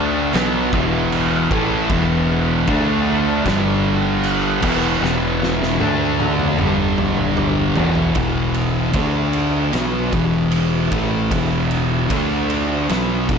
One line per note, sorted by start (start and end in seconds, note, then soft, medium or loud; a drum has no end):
0.00 0.30 D2 medium
0.00 0.33 D3 medium
0.00 0.33 A3 medium
0.00 0.33 D4 loud
0.33 0.70 B1 medium
0.33 0.71 B2 loud
0.33 0.72 F#3 loud
0.33 0.72 B3 loud
0.33 snare loud
0.33 crash medium
0.72 1.47 E1 medium
0.72 1.49 E2 loud
0.72 1.49 B2 loud
0.72 1.50 E3 loud
0.72 kick loud
1.12 crash medium
1.50 1.87 A1 loud
1.50 1.88 A2 medium
1.50 1.89 E3 loud
1.50 1.89 A3 loud
1.50 kick loud
1.89 2.64 E1 medium
1.89 2.66 E2 medium
1.89 2.66 B2 loud
1.89 2.67 E3 loud
1.89 kick loud
1.89 crash medium
2.67 3.42 D2 loud
2.67 3.43 D3 loud
2.67 3.45 A3 loud
2.67 3.45 D4 loud
2.67 kick loud
2.67 crash medium
3.44 4.59 G1 loud
3.44 4.61 G2 medium
3.44 4.62 D3 loud
3.44 4.62 G3 loud
3.44 kick medium
3.44 crash medium
3.48 snare medium
4.23 crash medium
4.61 4.99 E1 loud
4.61 5.00 E2 loud
4.61 5.01 B2 loud
4.61 5.01 E3 loud
4.61 kick loud
4.61 crash loud
5.02 5.77 E1 medium
5.02 5.79 E2 loud
5.02 5.79 B2 loud
5.02 5.80 E3 loud
5.02 snare medium
5.43 snare medium
5.63 snare medium
5.80 6.56 D2 medium
5.80 6.58 D3 loud
5.80 6.60 A3 loud
5.80 6.58 D4 loud
5.80 high tom medium
6.19 high tom medium
6.40 mid tom medium
6.59 7.73 G1 medium
6.59 7.76 G2 medium
6.59 7.76 D3 loud
6.59 7.76 G3 loud
6.59 mid tom medium
6.98 mid tom medium
7.17 mid tom medium
7.37 mid tom loud
7.76 8.14 E1 loud
7.76 8.15 E2 medium
7.76 8.15 B2 medium
7.76 8.15 E3 loud
7.76 floor tom loud
7.95 floor tom medium
8.15 8.91 E1 medium
8.15 8.94 E2 medium
8.15 8.94 B2 medium
8.15 8.95 E3 loud
8.15 kick loud
8.15 ride medium
8.54 ride medium
8.93 9.69 D2 medium
8.93 9.72 D3 medium
8.93 9.73 A3 medium
8.93 9.73 D4 loud
8.93 kick loud
8.93 ride loud
9.33 ride medium
9.73 10.10 B1 loud
9.73 10.11 B2 medium
9.73 10.12 F#3 loud
9.73 10.12 B3 loud
9.73 snare loud
9.73 ride medium
10.12 10.88 E1 medium
10.12 10.90 E2 loud
10.12 10.91 B2 loud
10.12 10.90 E3 loud
10.12 kick loud
10.12 ride medium
10.52 ride loud
10.91 11.29 A1 medium
10.91 11.30 A2 medium
10.91 11.30 E3 loud
10.91 11.30 A3 loud
10.91 kick loud
10.91 ride medium
11.31 12.06 E1 medium
11.31 12.09 E2 loud
11.31 12.09 B2 loud
11.31 12.09 E3 loud
11.31 kick loud
11.31 ride loud
11.71 ride medium
12.10 12.85 D2 medium
12.10 12.88 D3 medium
12.10 12.88 A3 loud
12.10 12.88 D4 loud
12.10 kick loud
12.10 ride loud
12.50 ride medium
12.89 13.26 B1 medium
12.89 13.28 B2 medium
12.89 13.28 F#3 medium
12.89 13.28 B3 medium
12.89 snare loud
12.89 ride medium
13.29 13.38 E1 medium
13.29 13.38 E2 medium
13.29 13.38 B2 medium
13.29 13.38 E3 loud
13.29 kick loud
13.29 ride medium